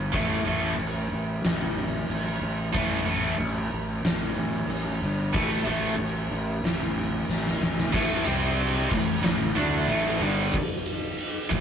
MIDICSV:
0, 0, Header, 1, 4, 480
1, 0, Start_track
1, 0, Tempo, 649351
1, 99, Time_signature, 4, 2, 24, 8
1, 8578, End_track
2, 0, Start_track
2, 0, Title_t, "Overdriven electric guitar"
2, 0, Program_c, 0, 29
2, 99, Note_on_c, 0, 45, 102
2, 100, Note_on_c, 0, 52, 100
2, 104, Note_on_c, 0, 57, 98
2, 292, Note_off_c, 0, 45, 0
2, 292, Note_off_c, 0, 52, 0
2, 294, Note_off_c, 0, 57, 0
2, 343, Note_on_c, 0, 45, 93
2, 344, Note_on_c, 0, 52, 90
2, 351, Note_on_c, 0, 57, 109
2, 534, Note_off_c, 0, 45, 0
2, 535, Note_off_c, 0, 52, 0
2, 538, Note_off_c, 0, 57, 0
2, 2020, Note_on_c, 0, 45, 86
2, 2027, Note_on_c, 0, 52, 89
2, 2029, Note_on_c, 0, 57, 91
2, 2215, Note_off_c, 0, 45, 0
2, 2219, Note_off_c, 0, 52, 0
2, 2220, Note_off_c, 0, 57, 0
2, 2268, Note_on_c, 0, 45, 93
2, 2272, Note_on_c, 0, 52, 101
2, 2272, Note_on_c, 0, 57, 95
2, 2459, Note_off_c, 0, 45, 0
2, 2461, Note_off_c, 0, 52, 0
2, 2461, Note_off_c, 0, 57, 0
2, 3944, Note_on_c, 0, 45, 83
2, 3947, Note_on_c, 0, 52, 89
2, 3952, Note_on_c, 0, 57, 102
2, 4139, Note_off_c, 0, 45, 0
2, 4140, Note_off_c, 0, 52, 0
2, 4143, Note_off_c, 0, 57, 0
2, 4181, Note_on_c, 0, 45, 100
2, 4184, Note_on_c, 0, 52, 93
2, 4187, Note_on_c, 0, 57, 104
2, 4377, Note_off_c, 0, 45, 0
2, 4379, Note_off_c, 0, 52, 0
2, 4380, Note_off_c, 0, 57, 0
2, 5867, Note_on_c, 0, 45, 87
2, 5873, Note_on_c, 0, 52, 100
2, 5878, Note_on_c, 0, 57, 100
2, 6101, Note_off_c, 0, 45, 0
2, 6102, Note_off_c, 0, 52, 0
2, 6104, Note_on_c, 0, 48, 88
2, 6105, Note_on_c, 0, 55, 89
2, 6106, Note_off_c, 0, 57, 0
2, 6109, Note_on_c, 0, 60, 104
2, 6579, Note_off_c, 0, 48, 0
2, 6579, Note_off_c, 0, 55, 0
2, 6581, Note_off_c, 0, 60, 0
2, 6585, Note_on_c, 0, 45, 65
2, 6590, Note_on_c, 0, 52, 68
2, 6778, Note_off_c, 0, 45, 0
2, 6781, Note_off_c, 0, 52, 0
2, 6826, Note_on_c, 0, 45, 60
2, 6829, Note_on_c, 0, 52, 68
2, 7018, Note_off_c, 0, 45, 0
2, 7020, Note_off_c, 0, 52, 0
2, 7061, Note_on_c, 0, 50, 99
2, 7066, Note_on_c, 0, 57, 92
2, 7067, Note_on_c, 0, 62, 95
2, 7292, Note_off_c, 0, 50, 0
2, 7293, Note_off_c, 0, 57, 0
2, 7295, Note_on_c, 0, 45, 93
2, 7296, Note_on_c, 0, 52, 87
2, 7300, Note_off_c, 0, 62, 0
2, 7304, Note_on_c, 0, 57, 109
2, 7533, Note_off_c, 0, 45, 0
2, 7533, Note_off_c, 0, 52, 0
2, 7537, Note_off_c, 0, 57, 0
2, 7541, Note_on_c, 0, 43, 86
2, 7542, Note_on_c, 0, 50, 92
2, 7547, Note_on_c, 0, 55, 99
2, 7776, Note_off_c, 0, 43, 0
2, 7776, Note_off_c, 0, 50, 0
2, 7779, Note_off_c, 0, 55, 0
2, 8500, Note_on_c, 0, 45, 65
2, 8507, Note_on_c, 0, 52, 75
2, 8578, Note_off_c, 0, 45, 0
2, 8578, Note_off_c, 0, 52, 0
2, 8578, End_track
3, 0, Start_track
3, 0, Title_t, "Fingered electric bass"
3, 0, Program_c, 1, 33
3, 0, Note_on_c, 1, 31, 88
3, 79, Note_off_c, 1, 31, 0
3, 101, Note_on_c, 1, 33, 82
3, 317, Note_off_c, 1, 33, 0
3, 339, Note_on_c, 1, 33, 92
3, 556, Note_off_c, 1, 33, 0
3, 578, Note_on_c, 1, 33, 92
3, 796, Note_off_c, 1, 33, 0
3, 826, Note_on_c, 1, 33, 86
3, 1040, Note_off_c, 1, 33, 0
3, 1071, Note_on_c, 1, 33, 92
3, 1500, Note_off_c, 1, 33, 0
3, 1551, Note_on_c, 1, 33, 83
3, 1764, Note_off_c, 1, 33, 0
3, 1784, Note_on_c, 1, 33, 85
3, 2000, Note_off_c, 1, 33, 0
3, 2032, Note_on_c, 1, 33, 79
3, 2245, Note_off_c, 1, 33, 0
3, 2261, Note_on_c, 1, 33, 89
3, 2479, Note_off_c, 1, 33, 0
3, 2510, Note_on_c, 1, 33, 96
3, 2724, Note_off_c, 1, 33, 0
3, 2749, Note_on_c, 1, 33, 94
3, 2964, Note_off_c, 1, 33, 0
3, 2991, Note_on_c, 1, 33, 93
3, 3206, Note_off_c, 1, 33, 0
3, 3225, Note_on_c, 1, 33, 86
3, 3443, Note_off_c, 1, 33, 0
3, 3462, Note_on_c, 1, 33, 80
3, 3681, Note_off_c, 1, 33, 0
3, 3708, Note_on_c, 1, 31, 95
3, 3925, Note_off_c, 1, 31, 0
3, 3949, Note_on_c, 1, 33, 90
3, 4165, Note_off_c, 1, 33, 0
3, 4188, Note_on_c, 1, 33, 88
3, 4405, Note_off_c, 1, 33, 0
3, 4426, Note_on_c, 1, 33, 89
3, 4643, Note_off_c, 1, 33, 0
3, 4664, Note_on_c, 1, 33, 84
3, 4883, Note_off_c, 1, 33, 0
3, 4904, Note_on_c, 1, 33, 94
3, 5338, Note_off_c, 1, 33, 0
3, 5389, Note_on_c, 1, 33, 82
3, 5605, Note_off_c, 1, 33, 0
3, 5625, Note_on_c, 1, 33, 88
3, 5843, Note_off_c, 1, 33, 0
3, 5866, Note_on_c, 1, 33, 90
3, 6090, Note_off_c, 1, 33, 0
3, 6114, Note_on_c, 1, 36, 92
3, 6561, Note_off_c, 1, 36, 0
3, 6589, Note_on_c, 1, 33, 79
3, 6812, Note_off_c, 1, 33, 0
3, 6833, Note_on_c, 1, 33, 91
3, 7053, Note_off_c, 1, 33, 0
3, 7067, Note_on_c, 1, 38, 85
3, 7290, Note_off_c, 1, 38, 0
3, 7306, Note_on_c, 1, 33, 87
3, 7529, Note_off_c, 1, 33, 0
3, 7537, Note_on_c, 1, 31, 102
3, 7764, Note_off_c, 1, 31, 0
3, 8512, Note_on_c, 1, 33, 86
3, 8578, Note_off_c, 1, 33, 0
3, 8578, End_track
4, 0, Start_track
4, 0, Title_t, "Drums"
4, 101, Note_on_c, 9, 36, 89
4, 103, Note_on_c, 9, 49, 52
4, 175, Note_off_c, 9, 36, 0
4, 176, Note_off_c, 9, 49, 0
4, 586, Note_on_c, 9, 49, 49
4, 660, Note_off_c, 9, 49, 0
4, 1067, Note_on_c, 9, 49, 61
4, 1069, Note_on_c, 9, 38, 121
4, 1141, Note_off_c, 9, 49, 0
4, 1143, Note_off_c, 9, 38, 0
4, 1553, Note_on_c, 9, 49, 56
4, 1627, Note_off_c, 9, 49, 0
4, 2029, Note_on_c, 9, 36, 107
4, 2029, Note_on_c, 9, 49, 52
4, 2103, Note_off_c, 9, 36, 0
4, 2103, Note_off_c, 9, 49, 0
4, 2514, Note_on_c, 9, 49, 46
4, 2588, Note_off_c, 9, 49, 0
4, 2991, Note_on_c, 9, 49, 58
4, 2993, Note_on_c, 9, 38, 112
4, 3064, Note_off_c, 9, 49, 0
4, 3067, Note_off_c, 9, 38, 0
4, 3473, Note_on_c, 9, 49, 55
4, 3547, Note_off_c, 9, 49, 0
4, 3950, Note_on_c, 9, 36, 111
4, 3950, Note_on_c, 9, 49, 60
4, 4024, Note_off_c, 9, 36, 0
4, 4024, Note_off_c, 9, 49, 0
4, 4433, Note_on_c, 9, 49, 57
4, 4507, Note_off_c, 9, 49, 0
4, 4914, Note_on_c, 9, 49, 62
4, 4916, Note_on_c, 9, 38, 104
4, 4988, Note_off_c, 9, 49, 0
4, 4990, Note_off_c, 9, 38, 0
4, 5391, Note_on_c, 9, 38, 51
4, 5465, Note_off_c, 9, 38, 0
4, 5512, Note_on_c, 9, 38, 63
4, 5586, Note_off_c, 9, 38, 0
4, 5631, Note_on_c, 9, 38, 88
4, 5704, Note_off_c, 9, 38, 0
4, 5750, Note_on_c, 9, 38, 80
4, 5824, Note_off_c, 9, 38, 0
4, 5864, Note_on_c, 9, 57, 108
4, 5868, Note_on_c, 9, 36, 97
4, 5938, Note_off_c, 9, 57, 0
4, 5942, Note_off_c, 9, 36, 0
4, 6108, Note_on_c, 9, 51, 69
4, 6181, Note_off_c, 9, 51, 0
4, 6348, Note_on_c, 9, 51, 90
4, 6422, Note_off_c, 9, 51, 0
4, 6587, Note_on_c, 9, 49, 95
4, 6589, Note_on_c, 9, 36, 93
4, 6661, Note_off_c, 9, 49, 0
4, 6663, Note_off_c, 9, 36, 0
4, 6831, Note_on_c, 9, 38, 114
4, 6905, Note_off_c, 9, 38, 0
4, 7069, Note_on_c, 9, 51, 77
4, 7143, Note_off_c, 9, 51, 0
4, 7306, Note_on_c, 9, 51, 97
4, 7380, Note_off_c, 9, 51, 0
4, 7547, Note_on_c, 9, 51, 72
4, 7621, Note_off_c, 9, 51, 0
4, 7782, Note_on_c, 9, 51, 99
4, 7789, Note_on_c, 9, 36, 102
4, 7856, Note_off_c, 9, 51, 0
4, 7863, Note_off_c, 9, 36, 0
4, 8026, Note_on_c, 9, 51, 76
4, 8100, Note_off_c, 9, 51, 0
4, 8268, Note_on_c, 9, 51, 89
4, 8341, Note_off_c, 9, 51, 0
4, 8510, Note_on_c, 9, 36, 76
4, 8511, Note_on_c, 9, 51, 73
4, 8578, Note_off_c, 9, 36, 0
4, 8578, Note_off_c, 9, 51, 0
4, 8578, End_track
0, 0, End_of_file